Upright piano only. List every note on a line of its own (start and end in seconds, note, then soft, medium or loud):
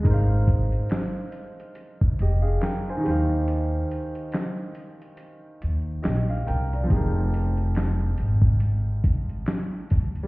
0.00 2.98 G#3 medium
0.00 2.98 D#4 medium
0.06 2.16 A#4 medium
0.06 2.18 C5 medium
0.13 2.19 F5 medium
2.21 2.44 G4 medium
2.21 2.43 D#5 medium
2.42 2.60 G#4 medium
2.42 2.60 F5 medium
2.61 2.85 A#4 medium
2.61 2.84 G5 medium
2.89 3.05 C5 medium
2.89 3.29 G#5 medium
2.97 6.40 D#3 medium
2.97 6.41 D#4 medium
3.03 5.57 G4 medium
3.03 5.59 C5 medium
3.10 5.60 F5 medium
6.02 6.27 G4 medium
6.02 6.27 D#5 medium
6.30 6.47 F5 medium
6.46 6.71 A#4 medium
6.46 6.70 G5 medium
6.73 7.14 D5 soft
6.73 7.13 A#5 medium
6.83 10.26 F3 medium
6.83 10.27 C4 medium
6.88 10.27 D#4 medium
6.88 10.25 G4 medium
6.94 10.27 G#4 medium
6.94 10.27 A#4 medium
10.23 10.27 G3 medium